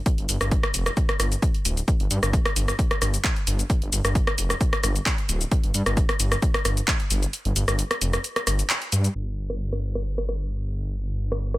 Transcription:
0.06 kick, closed hi-hat, shaker
0.18 G1, closed hi-hat
0.29 G1, open hi-hat, shaker
0.41 G1, cross-stick, closed hi-hat, shaker
0.51 kick, closed hi-hat, shaker
0.63 cross-stick, closed hi-hat
0.74 F1, open hi-hat, shaker
0.86 cross-stick, closed hi-hat, shaker
0.97 kick, closed hi-hat, shaker
1.09 cross-stick, closed hi-hat
1.20 G1, cross-stick, open hi-hat, shaker
1.32 closed hi-hat, shaker
1.42 kick, closed hi-hat, shaker
1.54 closed hi-hat
1.65 D1, open hi-hat, shaker
1.77 closed hi-hat, shaker
1.88 kick, closed hi-hat, shaker
2.00 G1, closed hi-hat
2.11 G2, open hi-hat, shaker
2.23 G1, cross-stick, closed hi-hat, shaker
2.33 kick, closed hi-hat, shaker
2.46 cross-stick, closed hi-hat
2.56 G1, open hi-hat, shaker
2.68 cross-stick, closed hi-hat, shaker
2.79 kick, closed hi-hat, shaker
2.91 cross-stick, closed hi-hat
3.02 G1, cross-stick, open hi-hat, shaker
3.14 closed hi-hat, shaker
3.24 kick, clap, closed hi-hat, shaker
3.36 closed hi-hat
3.47 G1, open hi-hat, shaker
3.59 closed hi-hat, shaker
3.70 kick, closed hi-hat, shaker
3.82 G1, closed hi-hat
3.92 G1, open hi-hat, shaker
4.04 G1, cross-stick, closed hi-hat, shaker
4.15 kick, closed hi-hat, shaker
4.27 cross-stick, closed hi-hat
4.38 F1, open hi-hat, shaker
4.50 cross-stick, closed hi-hat, shaker
4.61 kick, closed hi-hat, shaker
4.73 cross-stick, closed hi-hat
4.83 G1, cross-stick, open hi-hat, shaker
4.96 closed hi-hat, shaker
5.06 kick, clap, closed hi-hat, shaker
5.18 closed hi-hat
5.29 D1, open hi-hat, shaker
5.41 closed hi-hat, shaker
5.51 kick, closed hi-hat, shaker
5.64 G1, closed hi-hat
5.74 G2, open hi-hat, shaker
5.86 G1, cross-stick, closed hi-hat, shaker
5.97 kick, closed hi-hat, shaker
6.09 cross-stick, closed hi-hat
6.20 G1, open hi-hat, shaker
6.32 cross-stick, closed hi-hat, shaker
6.42 kick, closed hi-hat, shaker
6.54 cross-stick, closed hi-hat
6.65 G1, cross-stick, open hi-hat, shaker
6.77 closed hi-hat, shaker
6.88 kick, clap, closed hi-hat, shaker
7.00 closed hi-hat
7.11 G1, open hi-hat, shaker
7.23 closed hi-hat, shaker
7.33 closed hi-hat, shaker
7.45 G1, closed hi-hat
7.56 G1, open hi-hat, shaker
7.68 G1, cross-stick, closed hi-hat, shaker
7.79 closed hi-hat, shaker
7.91 cross-stick, closed hi-hat
8.01 F1, open hi-hat, shaker
8.13 cross-stick, closed hi-hat, shaker
8.24 closed hi-hat, shaker
8.36 cross-stick, closed hi-hat
8.47 G1, cross-stick, open hi-hat, shaker
8.59 closed hi-hat, shaker
8.70 clap, closed hi-hat, shaker
8.82 closed hi-hat
8.92 G2, open hi-hat, shaker
9.04 closed hi-hat, shaker
9.15 G1
9.50 cross-stick
9.72 cross-stick
9.95 cross-stick
10.18 cross-stick
10.29 cross-stick
11.32 cross-stick
11.54 cross-stick

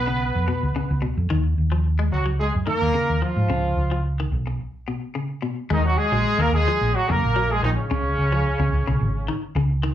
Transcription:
Already playing: B1 B3 B4
0.07 C#3
0.35 F2
0.48 B2
0.63 C#2
0.76 C#3, muted fingered electric bass stroke
0.91 C#2
1.02 B2
1.17 F2
1.30 D#2 D#3
1.58 D#2
1.72 F3
1.99 G#3
2.12 C#2 F#3 F#4
2.26 F#3
2.40 G#3 G#4
2.55 F#2
2.67 D#3 A#3 A#4
2.82 D#2
2.94 C#3
3.10 D#2
3.22 F3 F4
3.36 G#2
3.49 C#2 C#3
3.77 C#2
3.91 F3
4.20 D#3
4.32 B1
4.47 muted clean electric guitar stroke
4.88 B2
5.15 C#3
5.42 B2
5.70 D#2 D#3 G#3 D#4
5.85 F#3 F#4
5.97 G#3 G#4
6.12 A#1 F#3
6.25 muted fingered electric bass stroke
6.38 D#2 D#3 A#3 A#4
6.53 D#2 G#3 G#4
6.68 F3
6.81 A#1
6.94 F#3 F#4, muted fingered electric bass stroke
7.09 F#2 C#3 A#3 A#4
7.23 A#1
7.36 F#3
7.50 G#3 G#4
7.63 A#1 D#3 F3 D#4
7.76 C#3 C#4
7.91 C#2 C#3
8.18 C#2
8.32 F3
8.59 C#2 C#3
8.73 C#2
8.87 B1 C#3
9.00 G#1
9.28 D#3
9.55 C#2 C#3
9.83 D#3

